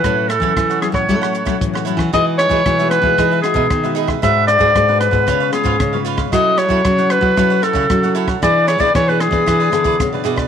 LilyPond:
<<
  \new Staff \with { instrumentName = "Clarinet" } { \time 4/4 \key a \major \tempo 4 = 114 b'8 a'4 gis'16 cis''4.~ cis''16 r8 | \key e \major dis''8 cis''4 b'4 gis'4 r8 | e''8 d''4 b'4 gis'4 r8 | dis''8 cis''4 b'4 a'4 r8 |
d''8 cis''16 d''16 cis''16 b'16 gis'2 r8 | }
  \new Staff \with { instrumentName = "Cavaquinho" } { \time 4/4 \key a \major <e' a' cis'' fis''>8 <e' a' cis'' fis''>16 <e' a' cis'' fis''>16 r16 <a' cis'' fis''>8 <a' cis'' fis''>16 <e' a' cis'' fis''>16 <a' cis'' fis''>16 <e' a' cis'' fis''>16 <e' a' cis'' fis''>16 r16 <a' cis'' fis''>16 <e' a' cis'' fis''>16 <a' cis'' fis''>16 | \key e \major <dis' gis' b' e''>8 <dis' gis' b' e''>16 <dis' gis' b' e''>16 r16 <gis' b' e''>8 <gis' b' e''>16 <dis' gis' b' e''>16 <gis' b' e''>16 <dis' gis' b' e''>16 <dis' gis' b' e''>16 r16 <gis' b' e''>16 <dis' gis' b' e''>16 <gis' b' e''>16 | <d' gis' b' fis''>8 <d' gis' b' fis''>16 <d' gis' b' fis''>16 r16 <gis' b' fis''>8 <gis' b' fis''>16 <eis' b' cis'' eis''>16 <b' cis'' eis''>16 <eis' b' cis'' eis''>16 <eis' b' cis'' eis''>16 r16 <b' cis'' eis''>16 <eis' b' cis'' eis''>16 <b' cis'' eis''>16 | <e' a' cis'' fis''>8 <e' a' cis'' fis''>16 <e' a' cis'' fis''>16 r16 <a' cis'' fis''>8 <a' cis'' fis''>16 <e' a' cis'' fis''>16 <a' cis'' fis''>16 <e' a' cis'' fis''>16 <e' a' cis'' fis''>16 r16 <a' cis'' fis''>16 <e' a' cis'' fis''>16 <a' cis'' fis''>16 |
<e' gis' b' d''>8 <e' gis' b' d''>16 <e' gis' b' d''>16 r16 <gis' b' d''>8 <gis' b' d''>16 <e' gis' b' d''>16 <gis' b' d''>16 <e' gis' b' d''>16 <e' gis' b' d''>16 r16 <gis' b' d''>16 <e' gis' b' d''>16 <gis' b' d''>16 | }
  \new Staff \with { instrumentName = "Nylon-string guitar" } { \time 4/4 \key a \major << { <fis cis' e'>8 r16 <fis cis' e'>8. <fis cis' e'>8 <fis cis' e'>8. <fis cis' e'>8. <fis cis' e'>16 r16 | \key e \major <gis dis' fis'>8. <gis dis' fis'>16 <gis dis' fis'>16 <gis dis' fis'>8 <gis dis' fis'>8. <gis dis' fis'>8 r16 <gis dis' fis'>8. | <d' fis' b'>8. <d' fis' b'>16 <d' fis' b'>16 <d' fis' b'>8 <gis b f'>8. <gis b eis'>8 r16 <gis b eis'>8. | <cis' e' a'>8 r16 <cis' e' a'>16 <cis' e' a'>16 <cis' e' a'>8 <cis' e' a'>8. <cis' e' a'>8 <cis' e' a'>16 <cis' e' a'>8. |
<b d' gis'>8 r16 <b d' gis'>16 <b d' gis'>16 <b d' gis'>8 <b d' gis'>8. <b d' gis'>8 <b d' gis'>16 <b d' gis'>8. | } \\ { a,4 e4 a,4 e4 | e4 b,4 e4 b,4 | gis4 gis4 cis4 gis,4 | fis4 cis4 fis4 cis4 |
e4 b,4 e4 b,4 | } >> }
  \new Staff \with { instrumentName = "Nylon-string guitar" } { \clef bass \time 4/4 \key a \major a,8. e16 e8. a,16 a4 a,8. e16 | \key e \major e8. e16 e8. e16 e8 r16 b,16 dis4 | gis,8. gis,16 gis,8. gis,16 cis8 r16 gis,16 cis4 | fis8. fis16 fis8. fis16 fis8 r16 cis16 fis4 |
e8. e16 e8. e16 e8 d8 cis8 b,8 | }
  \new DrumStaff \with { instrumentName = "Drums" } \drummode { \time 4/4 <hh bd ss>8 <hh ss>16 bd16 <hh bd ss>16 hh16 <hh ss>16 <bd ss>16 <hh bd>16 <hh ss>16 hh16 <bd ss>16 <hh bd>16 ss16 hh16 <bd ss>16 | <hh bd ss>8 <hh ss>16 bd16 <hh bd ss>16 hh16 <hh ss>16 bd16 <hh bd ss>8 <hh ss>16 bd16 <hh bd ss>16 hh16 hh16 <bd ss>16 | <hh bd ss>8 <hh ss>16 bd16 <hh bd ss>8 <hh ss>16 <hh bd>16 <hh bd ss>8 <hh ss>16 bd16 <hh bd ss>8 hh16 <bd ss>16 | <hh bd ss>8 <hh ss>16 bd16 <hh bd ss>16 hh16 <hh ss>16 bd16 <hh bd ss>8 <hh ss>16 bd16 <hh bd ss>16 hh16 hh16 <bd ss>16 |
<hh bd ss>8 <hh ss>16 bd16 <hh bd ss>8 <hh ss>16 <hh bd>16 <hh bd ss>8 <hh ss>16 bd16 <hh bd ss>8 hh16 <bd ss>16 | }
>>